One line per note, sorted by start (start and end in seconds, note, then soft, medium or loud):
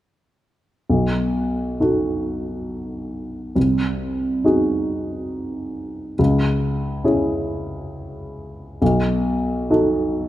0.89 1.77 B1 soft
1.80 3.52 D#4 soft
1.80 3.53 F#4 soft
1.80 3.53 A4 soft
3.56 4.42 C2 soft
4.44 6.15 D#4 soft
4.44 6.15 F#4 soft
4.44 6.15 G#4 soft
6.19 7.03 C#2 soft
7.04 8.76 C#4 soft
7.04 8.77 E4 soft
7.04 8.77 G#4 soft
8.82 9.68 B1 soft
9.70 10.28 D#4 soft
9.70 10.28 F#4 soft
9.70 10.28 A4 soft